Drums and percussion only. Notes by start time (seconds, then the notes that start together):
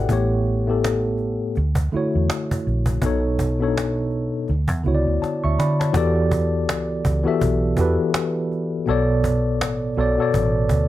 0.09 cajon bass
0.47 cajon slap
0.84 cajon slap
1.18 cajon slap
1.55 cajon slap
1.75 cajon bass
1.92 cajon slap
2.13 cajon slap
2.30 cajon slap
2.51 cajon bass
2.67 cajon slap
2.86 cajon bass
3.02 cajon bass
3.39 cajon bass
3.59 cajon slap
3.77 cajon slap
4.11 cajon slap
4.34 cajon slap
4.48 cajon slap
4.68 cajon bass
4.84 cajon slap
5.06 cajon slap
5.23 cajon slap
5.60 cajon slap
5.81 cajon slap
5.94 cajon bass
6.31 cajon bass
6.69 cajon slap
7.05 cajon bass
7.40 cajon bass, cajon slap
7.77 cajon bass
8.14 cajon slap
8.52 cajon slap
8.87 cajon slap
9.24 cajon bass
9.61 cajon slap
9.95 cajon slap
10.32 cajon bass, cajon slap
10.69 cajon bass